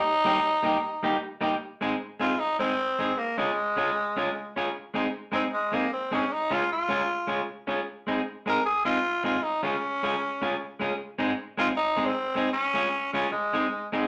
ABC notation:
X:1
M:4/4
L:1/16
Q:1/4=154
K:Ab
V:1 name="Clean electric guitar"
z2 [G,B,EG]2 z2 [G,B,EG]2 z2 [G,B,EG]2 z2 [G,B,EG]2 | z2 [A,CEA]2 z2 [A,CEA]2 z2 [A,CEA]2 z2 [A,CEA]2 | z2 [A,DFA]2 z2 [A,DFA]2 z2 [A,DFA]2 z2 [A,DFA]2 | z2 [A,CEA]2 z2 [A,CEA]2 z2 [A,CEA]2 z2 [A,CEA]2 |
z2 [A,DFA]2 z2 [A,DFA]2 z2 [A,DFA]2 z2 [A,DFA]2 | z2 [A,CEA]2 z2 [A,CEA]2 z2 [A,CEA]2 z2 [A,CEA]2 | z2 [A,DFA]2 z2 [A,DFA]2 z2 [A,DFA]2 z2 [A,DFA]2 | z2 [A,CEA]2 z2 [A,CEA]2 z2 [A,CEA]2 z2 [A,CEA]2 |
z2 [A,DFA]2 z2 [A,DFA]2 z2 [A,CEA]2 z2 [A,CEA]2 |]
V:2 name="Tenor saxophone"
E12 z4 | z6 F2 E2 C6 | B,2 A,12 z2 | z6 C2 A,2 B,2 C2 D2 |
E2 F2 F8 z4 | z6 B2 A2 F4 F2 | E2 D12 z2 | z6 F2 E3 C4- C |
D6 D2 A,6 z2 |]